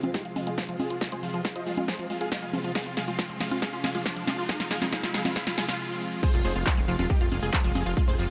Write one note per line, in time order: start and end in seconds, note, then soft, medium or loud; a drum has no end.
0.00 0.11 C3 medium
0.00 0.11 F3 medium
0.00 0.11 G#3 medium
0.00 0.11 F4 medium
0.00 0.10 F4 medium
0.00 closed hi-hat medium
0.00 riser medium
0.00 high conga medium
0.14 0.29 C3 medium
0.14 0.30 F3 medium
0.14 0.29 G#3 medium
0.14 0.18 G#3 medium
0.14 0.21 D#4 medium
0.14 0.29 F4 medium
0.14 0.21 G4 loud
0.14 kick loud
0.14 snare medium
0.14 closed hi-hat medium
0.25 0.32 F4 medium
0.25 0.31 F4 medium
0.25 closed hi-hat medium
0.36 0.51 C3 medium
0.36 0.51 F3 medium
0.36 0.51 G#3 medium
0.36 0.41 G#3 medium
0.36 0.51 F4 medium
0.36 0.43 F4 medium
0.36 open hi-hat loud
0.36 high conga medium
0.47 0.50 G#3 loud
0.47 0.54 F4 medium
0.47 0.54 G#4 loud
0.47 closed hi-hat medium
0.58 0.65 C3 medium
0.58 0.63 F3 medium
0.58 0.65 F3 medium
0.58 0.65 G#3 medium
0.58 0.65 F4 medium
0.58 kick loud
0.58 snare medium
0.58 closed hi-hat medium
0.69 0.84 C3 medium
0.69 0.84 F3 medium
0.69 0.77 F3 medium
0.69 0.84 G#3 medium
0.69 0.84 F4 medium
0.69 0.76 F4 medium
0.69 closed hi-hat medium
0.79 0.83 G#3 medium
0.79 0.86 F4 medium
0.79 0.86 G#4 medium
0.79 open hi-hat medium
0.79 high conga medium
0.90 0.98 C3 medium
0.90 0.98 F3 medium
0.90 0.98 G#3 medium
0.90 0.97 F4 medium
0.90 0.98 F4 medium
0.90 0.96 F4 medium
0.90 closed hi-hat medium
1.01 1.16 C3 medium
1.01 1.16 F3 medium
1.01 1.16 G#3 medium
1.01 1.07 G#3 medium
1.01 1.16 F4 medium
1.01 1.08 F4 medium
1.01 kick loud
1.01 snare medium
1.01 closed hi-hat medium
1.12 1.15 G#3 loud
1.12 1.19 G#4 medium
1.12 1.19 C5 medium
1.12 closed hi-hat medium
1.23 1.38 C3 medium
1.23 1.28 F3 medium
1.23 1.38 F3 medium
1.23 1.38 G#3 medium
1.23 1.30 F4 medium
1.23 1.38 F4 medium
1.23 open hi-hat loud
1.34 1.42 F3 medium
1.34 1.41 F4 medium
1.34 closed hi-hat medium
1.45 1.52 C3 medium
1.45 1.52 F3 medium
1.45 1.52 G#3 medium
1.45 1.48 G#3 medium
1.45 1.52 F4 medium
1.45 kick loud
1.45 snare medium
1.45 closed hi-hat medium
1.56 1.71 C3 medium
1.56 1.71 F3 medium
1.56 1.71 G#3 medium
1.56 1.61 F4 medium
1.56 1.71 F4 medium
1.56 1.63 C5 medium
1.56 1.63 D#5 medium
1.56 closed hi-hat medium
1.67 1.72 G#3 medium
1.67 1.74 F4 medium
1.67 open hi-hat medium
1.77 1.85 C3 medium
1.77 1.85 F3 medium
1.77 1.85 G#3 medium
1.77 1.81 G#3 loud
1.77 1.85 F4 medium
1.77 1.84 F4 medium
1.77 closed hi-hat medium
1.77 high conga medium
1.88 2.03 C3 medium
1.88 2.03 F3 medium
1.88 1.94 F3 medium
1.88 2.03 G#3 medium
1.88 2.03 F4 medium
1.88 1.95 G#4 medium
1.88 1.95 C5 loud
1.88 kick loud
1.88 snare medium
1.88 closed hi-hat medium
1.99 2.07 F3 medium
1.99 2.06 F4 medium
1.99 closed hi-hat medium
2.10 2.25 C3 medium
2.10 2.25 F3 medium
2.10 2.25 G#3 medium
2.10 2.13 G#3 medium
2.10 2.17 F4 medium
2.10 2.25 F4 medium
2.10 open hi-hat loud
2.21 2.26 F4 medium
2.21 2.28 G#4 medium
2.21 2.28 F5 medium
2.21 closed hi-hat medium
2.32 2.39 C3 medium
2.32 2.39 F3 loud
2.32 2.37 G#3 medium
2.32 2.39 G#3 medium
2.32 2.39 F4 medium
2.32 kick loud
2.32 snare medium
2.32 closed hi-hat medium
2.42 2.58 C3 medium
2.42 2.58 F3 medium
2.42 2.58 G#3 medium
2.42 2.46 G#3 loud
2.42 2.58 F4 medium
2.42 2.50 G#4 medium
2.42 2.50 F5 medium
2.42 closed hi-hat medium
2.53 2.59 F3 medium
2.53 2.60 F4 medium
2.53 open hi-hat medium
2.53 high conga medium
2.64 2.72 C3 medium
2.64 2.72 F3 medium
2.64 2.72 G#3 medium
2.64 2.72 F4 medium
2.64 2.71 F4 medium
2.64 closed hi-hat medium
2.75 2.90 C3 medium
2.75 2.90 F3 medium
2.75 2.90 G#3 medium
2.75 2.78 G#3 medium
2.75 2.90 F4 medium
2.75 2.82 G#4 medium
2.75 2.82 F5 medium
2.75 kick loud
2.75 snare medium
2.75 closed hi-hat medium
2.86 2.91 F4 medium
2.86 2.93 F4 medium
2.86 closed hi-hat medium
2.97 3.12 C3 medium
2.97 3.12 F3 medium
2.97 3.02 G#3 medium
2.97 3.12 G#3 medium
2.97 3.12 F4 medium
2.97 3.04 G#4 medium
2.97 3.04 F5 medium
2.97 snare medium
2.97 open hi-hat loud
3.08 3.11 G#3 medium
3.08 3.15 F4 medium
3.08 closed hi-hat medium
3.19 3.26 C3 medium
3.19 3.24 F3 medium
3.19 3.26 F3 medium
3.19 3.26 G#3 medium
3.19 3.26 F4 medium
3.19 kick loud
3.19 snare medium
3.19 closed hi-hat medium
3.30 3.45 C3 medium
3.30 3.38 F3 medium
3.30 3.45 F3 medium
3.30 3.45 G#3 medium
3.30 3.45 F4 medium
3.30 closed hi-hat medium
3.40 3.44 G#3 medium
3.40 3.47 F4 medium
3.40 snare medium
3.40 open hi-hat loud
3.51 3.59 C3 medium
3.51 3.59 F3 medium
3.51 3.59 G#3 medium
3.51 3.57 F4 medium
3.51 3.58 F4 medium
3.51 3.59 F4 medium
3.51 closed hi-hat medium
3.51 high conga medium
3.62 3.77 C3 medium
3.62 3.77 F3 medium
3.62 3.65 G#3 medium
3.62 3.77 G#3 medium
3.62 3.77 F4 medium
3.62 3.69 G#4 medium
3.62 3.69 F5 loud
3.62 kick loud
3.62 snare medium
3.62 closed hi-hat medium
3.73 3.78 F4 medium
3.73 3.80 F4 medium
3.73 closed hi-hat medium
3.84 3.99 C3 medium
3.84 3.99 F3 medium
3.84 3.89 G#3 medium
3.84 3.99 G#3 medium
3.84 3.99 F4 medium
3.84 3.91 G#4 medium
3.84 3.91 F5 medium
3.84 snare medium
3.84 open hi-hat loud
3.84 high conga medium
3.95 3.98 G#3 medium
3.95 4.02 F4 medium
3.95 closed hi-hat medium
4.06 4.13 C3 medium
4.06 4.11 F3 medium
4.06 4.13 F3 medium
4.06 4.13 G#3 loud
4.06 4.13 F4 medium
4.06 kick loud
4.06 snare medium
4.06 closed hi-hat medium
4.16 4.32 C3 medium
4.16 4.24 F3 medium
4.16 4.32 F3 medium
4.16 4.32 G#3 medium
4.16 4.32 F4 medium
4.16 closed hi-hat medium
4.27 4.31 G#3 medium
4.27 4.34 F4 medium
4.27 snare medium
4.27 open hi-hat loud
4.27 high conga medium
4.38 4.46 C3 medium
4.38 4.46 F3 medium
4.38 4.46 G#3 medium
4.38 4.44 F4 medium
4.38 4.45 F4 medium
4.38 4.46 F4 medium
4.38 closed hi-hat medium
4.49 4.64 C3 medium
4.49 4.64 F3 medium
4.49 4.52 G#3 medium
4.49 4.64 G#3 medium
4.49 4.64 F4 medium
4.49 4.56 G#4 medium
4.49 4.56 F5 loud
4.49 kick loud
4.49 snare medium
4.49 closed hi-hat medium
4.60 4.65 F4 medium
4.60 4.67 F4 medium
4.60 snare medium
4.60 closed hi-hat medium
4.71 4.86 C3 medium
4.71 4.86 F3 medium
4.71 4.76 G#3 medium
4.71 4.86 G#3 medium
4.71 4.86 F4 medium
4.71 4.78 G#4 medium
4.71 4.78 F5 medium
4.71 snare loud
4.71 open hi-hat loud
4.82 4.85 G#3 medium
4.82 4.89 F4 medium
4.82 snare medium
4.82 closed hi-hat medium
4.82 high conga medium
4.92 5.00 C3 medium
4.92 5.00 F3 medium
4.92 4.96 G#3 medium
4.92 5.00 G#3 medium
4.92 5.00 F4 medium
4.92 5.00 G#4 medium
4.92 5.00 F5 loud
4.92 kick loud
4.92 snare medium
4.92 closed hi-hat medium
5.03 5.19 C3 medium
5.03 5.19 F3 medium
5.03 5.19 G#3 medium
5.03 5.09 F4 medium
5.03 5.10 F4 medium
5.03 5.19 F4 medium
5.03 snare medium
5.03 closed hi-hat medium
5.14 5.20 G#3 medium
5.14 5.21 G#4 medium
5.14 5.21 F5 medium
5.14 snare loud
5.14 open hi-hat loud
5.25 5.33 C3 medium
5.25 5.33 F3 medium
5.25 5.28 G#3 loud
5.25 5.33 G#3 medium
5.25 5.32 F4 medium
5.25 5.33 F4 loud
5.25 snare medium
5.25 closed hi-hat medium
5.25 high conga medium
5.36 5.51 C3 medium
5.36 5.51 F3 medium
5.36 5.39 G#3 medium
5.36 5.51 G#3 medium
5.36 5.51 F4 medium
5.36 5.43 G#4 medium
5.36 5.43 F5 loud
5.36 kick loud
5.36 snare loud
5.36 closed hi-hat medium
5.47 5.54 F4 medium
5.47 5.52 F4 medium
5.47 snare medium
5.47 closed hi-hat medium
5.58 5.73 C3 medium
5.58 5.73 F3 medium
5.58 5.61 G#3 medium
5.58 5.73 G#3 medium
5.58 5.73 F4 medium
5.58 5.65 G#4 medium
5.58 5.65 F5 loud
5.58 snare loud
5.58 open hi-hat loud
5.69 5.74 F4 medium
5.69 5.76 F4 medium
5.69 snare medium
5.69 closed hi-hat medium
5.80 5.87 C3 medium
5.80 5.87 F3 medium
5.80 5.87 G#3 loud
5.80 5.87 F4 medium
5.91 6.06 C3 medium
5.91 6.06 F3 medium
5.91 6.06 G#3 loud
5.91 6.06 F4 medium
6.12 6.20 C3 medium
6.12 6.20 F3 medium
6.12 6.20 G#3 medium
6.12 6.20 F4 medium
6.23 6.38 C3 medium
6.23 6.28 F3 medium
6.23 6.38 F3 medium
6.23 6.38 G#3 loud
6.23 6.38 F4 medium
6.23 6.30 G#4 medium
6.23 6.30 C5 loud
6.23 kick loud
6.23 closed hi-hat medium
6.23 crash loud
6.23 shaker soft
6.34 6.42 F1 medium
6.34 6.42 F3 medium
6.34 6.41 F4 medium
6.34 closed hi-hat medium
6.34 shaker soft
6.45 6.53 F1 medium
6.45 6.60 C3 medium
6.45 6.60 F3 loud
6.45 6.48 G#3 medium
6.45 6.60 G#3 medium
6.45 6.60 F4 medium
6.45 6.52 G#4 medium
6.45 6.52 C5 medium
6.45 open hi-hat loud
6.45 shaker medium
6.56 6.64 F1 medium
6.56 6.63 F4 medium
6.56 6.61 F4 medium
6.56 6.63 F4 medium
6.56 closed hi-hat medium
6.56 shaker soft
6.66 6.74 C3 medium
6.66 6.74 F3 medium
6.66 6.72 G#3 medium
6.66 6.74 G#3 medium
6.66 6.73 F4 medium
6.66 6.74 F4 medium
6.66 kick loud
6.66 clap loud
6.66 closed hi-hat medium
6.66 shaker soft
6.77 6.85 F1 medium
6.77 6.93 C3 loud
6.77 6.93 F3 loud
6.77 6.81 G#3 loud
6.77 6.93 G#3 medium
6.77 6.93 F4 medium
6.77 closed hi-hat medium
6.88 6.96 F1 loud
6.88 6.94 F3 medium
6.88 6.95 F4 medium
6.88 open hi-hat medium
6.88 shaker medium
6.99 7.07 D#1 loud
6.99 7.07 C3 medium
6.99 7.07 F3 medium
6.99 7.07 G#3 medium
6.99 7.06 F4 medium
6.99 7.07 F4 medium
6.99 closed hi-hat medium
6.99 high conga medium
6.99 shaker soft
7.10 7.25 C3 medium
7.10 7.25 F3 medium
7.10 7.13 G#3 medium
7.10 7.25 G#3 medium
7.10 7.17 D#4 medium
7.10 7.25 F4 medium
7.10 7.17 G4 medium
7.10 7.17 G4 loud
7.10 kick loud
7.10 closed hi-hat medium
7.10 shaker soft
7.21 7.29 F1 medium
7.21 7.26 F4 medium
7.21 7.28 F4 medium
7.21 closed hi-hat medium
7.32 7.40 F1 medium
7.32 7.47 C3 medium
7.32 7.47 F3 medium
7.32 7.47 G#3 medium
7.32 7.37 G#3 medium
7.32 7.39 F4 medium
7.32 7.47 F4 medium
7.32 7.39 F4 medium
7.32 open hi-hat loud
7.32 high conga medium
7.32 shaker medium
7.42 7.50 F1 medium
7.42 7.46 G#3 loud
7.42 7.50 F4 medium
7.42 7.50 G#4 medium
7.42 7.50 G#4 loud
7.42 closed hi-hat medium
7.42 shaker soft
7.53 7.61 C3 loud
7.53 7.61 F3 medium
7.53 7.59 F3 medium
7.53 7.61 G#3 loud
7.53 7.60 F4 medium
7.53 7.61 F4 loud
7.53 kick loud
7.53 clap loud
7.53 closed hi-hat medium
7.53 shaker soft
7.64 7.72 F1 medium
7.64 7.80 C3 medium
7.64 7.79 F3 medium
7.64 7.72 F3 medium
7.64 7.80 G#3 medium
7.64 7.80 F4 medium
7.64 7.71 F4 medium
7.64 closed hi-hat medium
7.64 shaker soft
7.75 7.83 F1 loud
7.75 7.78 G#3 medium
7.75 7.82 F4 medium
7.75 7.82 G#4 loud
7.75 7.82 G#4 medium
7.75 open hi-hat loud
7.75 high conga medium
7.75 shaker medium
7.86 7.94 F1 loud
7.86 7.94 C3 medium
7.86 7.94 F3 medium
7.86 7.94 G#3 medium
7.86 7.93 F4 medium
7.86 7.94 F4 medium
7.86 7.91 F4 medium
7.86 closed hi-hat medium
7.86 shaker soft
7.97 8.12 C3 medium
7.97 8.12 F3 medium
7.97 8.12 G#3 loud
7.97 8.02 G#3 medium
7.97 8.04 F4 medium
7.97 8.12 F4 medium
7.97 kick loud
7.97 closed hi-hat medium
7.97 shaker soft
8.08 8.16 F1 medium
8.08 8.11 G#3 loud
8.08 8.15 G#4 medium
8.08 8.15 C5 loud
8.08 closed hi-hat medium
8.08 shaker soft
8.19 8.27 F1 medium
8.19 8.30 C3 medium
8.19 8.30 F3 medium
8.19 8.24 F3 medium
8.19 8.30 G#3 medium
8.19 8.26 F4 medium
8.19 8.30 F4 loud
8.19 8.26 F4 medium
8.19 open hi-hat loud
8.19 shaker medium